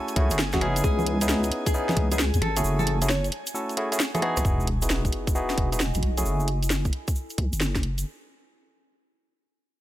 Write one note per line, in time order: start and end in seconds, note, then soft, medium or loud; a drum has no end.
0.00 0.14 A3 medium
0.00 0.14 C#4 medium
0.00 0.14 E4 medium
0.00 0.14 F#4 medium
0.00 0.14 A4 loud
0.00 4.46 G#5 medium
0.08 closed hi-hat soft
0.08 shaker soft
0.16 0.33 C#2 medium
0.16 0.29 A3 medium
0.16 0.29 C#4 medium
0.16 0.29 E4 medium
0.16 0.29 F#4 medium
0.16 0.29 G#4 loud
0.16 kick loud
0.16 open hi-hat loud
0.30 0.82 F#1 loud
0.30 0.39 A3 medium
0.30 0.39 C#4 medium
0.30 0.39 E4 medium
0.30 0.39 F#4 medium
0.30 0.39 G#4 medium
0.30 closed hi-hat medium
0.30 shaker medium
0.39 finger snap medium
0.39 snare loud
0.39 shaker medium
0.52 0.60 A3 medium
0.52 0.60 C#4 medium
0.52 0.60 E4 medium
0.52 0.65 F#4 medium
0.52 0.60 F#4 medium
0.52 0.60 G#4 loud
0.52 kick medium
0.52 snare medium
0.52 closed hi-hat medium
0.52 high conga medium
0.52 shaker soft
0.61 1.18 B3 loud
0.61 1.18 C#4 medium
0.61 1.18 D#4 medium
0.61 1.18 E4 medium
0.61 1.18 G#4 loud
0.61 finger snap medium
0.61 open hi-hat medium
0.76 closed hi-hat medium
0.76 shaker medium
0.84 1.50 C#2 loud
0.84 1.04 G#4 loud
0.84 kick loud
0.84 shaker medium
0.99 high conga medium
0.99 shaker soft
1.06 open hi-hat loud
1.21 1.72 B3 medium
1.21 1.72 C#4 medium
1.21 1.72 D#4 medium
1.21 1.72 E4 medium
1.21 1.72 G#4 loud
1.21 closed hi-hat medium
1.21 shaker medium
1.29 snare loud
1.29 shaker medium
1.44 closed hi-hat soft
1.44 shaker soft
1.52 open hi-hat loud
1.66 1.84 G#4 loud
1.66 kick loud
1.66 closed hi-hat medium
1.66 shaker medium
1.74 2.08 B3 loud
1.74 2.08 C#4 medium
1.74 2.08 D#4 medium
1.74 2.08 E4 medium
1.74 2.08 G#4 loud
1.74 shaker medium
1.89 snare medium
1.89 closed hi-hat soft
1.89 high conga medium
1.89 shaker soft
1.97 2.31 C#2 medium
1.97 kick loud
1.97 open hi-hat loud
2.12 2.19 B3 medium
2.12 2.19 C#4 medium
2.12 2.19 D#4 medium
2.12 2.19 E4 medium
2.12 2.23 G#4 loud
2.12 2.19 G#4 medium
2.12 closed hi-hat medium
2.12 shaker medium
2.19 finger snap medium
2.19 snare loud
2.19 shaker medium
2.34 2.41 E2 medium
2.34 closed hi-hat medium
2.34 shaker soft
2.42 2.62 G#1 medium
2.42 2.59 A4 loud
2.42 finger snap medium
2.42 open hi-hat loud
2.57 2.98 A3 loud
2.57 2.98 C#4 medium
2.57 2.98 E4 medium
2.57 2.98 F#4 medium
2.57 2.98 G#4 loud
2.57 closed hi-hat medium
2.57 shaker medium
2.64 3.31 F#1 loud
2.64 shaker medium
2.79 2.91 A4 loud
2.79 high conga medium
2.79 shaker soft
2.87 open hi-hat loud
3.02 3.09 A3 medium
3.02 3.09 C#4 medium
3.02 3.09 E4 medium
3.02 3.09 F#4 medium
3.02 3.09 G#4 medium
3.02 closed hi-hat medium
3.02 shaker medium
3.09 3.26 C#5 medium
3.09 snare loud
3.09 shaker medium
3.24 closed hi-hat soft
3.24 shaker soft
3.32 open hi-hat loud
3.47 closed hi-hat medium
3.47 shaker medium
3.55 3.75 A3 medium
3.55 3.75 C#4 medium
3.55 3.75 E4 medium
3.55 3.75 F#4 medium
3.55 3.75 A4 loud
3.55 shaker medium
3.69 closed hi-hat soft
3.69 shaker soft
3.77 3.90 A3 medium
3.77 3.90 C#4 medium
3.77 3.90 E4 medium
3.77 3.90 F#4 medium
3.77 3.90 G#4 loud
3.77 open hi-hat loud
3.92 4.00 A3 medium
3.92 4.00 C#4 medium
3.92 4.00 E4 medium
3.92 4.00 F#4 medium
3.92 4.00 G#4 medium
3.92 closed hi-hat medium
3.92 shaker medium
4.00 finger snap medium
4.00 snare loud
4.00 shaker medium
4.14 4.20 A3 medium
4.14 4.20 C#4 medium
4.14 4.20 E4 medium
4.14 4.20 F#4 medium
4.14 4.20 G#4 loud
4.14 4.26 A4 medium
4.14 cross-stick medium
4.14 closed hi-hat medium
4.14 high conga medium
4.14 shaker soft
4.22 4.67 B3 loud
4.22 4.67 D#4 medium
4.22 4.67 E4 medium
4.22 4.67 F#4 medium
4.22 4.67 G#4 loud
4.22 cross-stick medium
4.22 open hi-hat loud
4.37 4.44 C#2 medium
4.37 cross-stick medium
4.37 closed hi-hat medium
4.37 shaker medium
4.45 5.11 E1 loud
4.45 6.99 F#4 medium
4.45 kick loud
4.45 sub drop medium
4.45 shaker medium
4.60 shaker soft
4.67 open hi-hat loud
4.82 5.33 B3 medium
4.82 5.33 D#4 medium
4.82 5.33 E4 medium
4.82 5.33 F#4 medium
4.82 5.33 G#4 medium
4.82 closed hi-hat medium
4.82 shaker medium
4.89 6.99 D#5 medium
4.89 snare loud
4.89 shaker medium
5.05 kick medium
5.05 closed hi-hat soft
5.05 shaker soft
5.13 open hi-hat loud
5.27 8.06 G#5 medium
5.27 kick loud
5.27 closed hi-hat medium
5.27 shaker medium
5.35 5.69 B3 medium
5.35 5.69 D#4 medium
5.35 5.69 E4 medium
5.35 5.69 F#4 medium
5.35 5.69 G#4 loud
5.35 shaker medium
5.49 snare medium
5.49 closed hi-hat soft
5.49 shaker soft
5.58 5.92 E1 medium
5.58 kick loud
5.58 open hi-hat loud
5.72 5.80 B3 medium
5.72 5.80 D#4 medium
5.72 5.80 E4 medium
5.72 5.80 F#4 medium
5.72 5.80 G#4 medium
5.72 closed hi-hat medium
5.72 shaker medium
5.80 snare loud
5.80 shaker medium
5.94 6.02 G#1 medium
5.94 closed hi-hat soft
5.94 shaker soft
6.03 6.23 B1 medium
6.03 open hi-hat medium
6.17 6.48 A3 medium
6.17 6.48 C#4 medium
6.17 6.48 E4 medium
6.17 6.48 F#4 medium
6.17 6.48 G#4 loud
6.17 closed hi-hat medium
6.17 shaker medium
6.25 6.92 F#1 medium
6.25 8.06 E4 medium
6.25 shaker medium
6.40 shaker soft
6.48 open hi-hat loud
6.63 8.06 A4 medium
6.63 closed hi-hat medium
6.63 shaker medium
6.70 snare loud
6.70 shaker medium
6.85 kick medium
6.85 closed hi-hat soft
6.85 shaker soft
6.93 open hi-hat medium
7.08 kick medium
7.08 closed hi-hat medium
7.08 shaker medium
7.15 shaker medium
7.30 closed hi-hat soft
7.30 shaker soft
7.38 7.54 C#2 medium
7.38 kick loud
7.38 open hi-hat loud
7.53 8.04 F#1 medium
7.53 closed hi-hat medium
7.53 shaker medium
7.61 snare loud
7.61 shaker medium
7.76 kick medium
7.76 snare medium
7.76 closed hi-hat soft
7.76 shaker soft
7.83 open hi-hat medium
7.98 closed hi-hat medium
7.98 shaker medium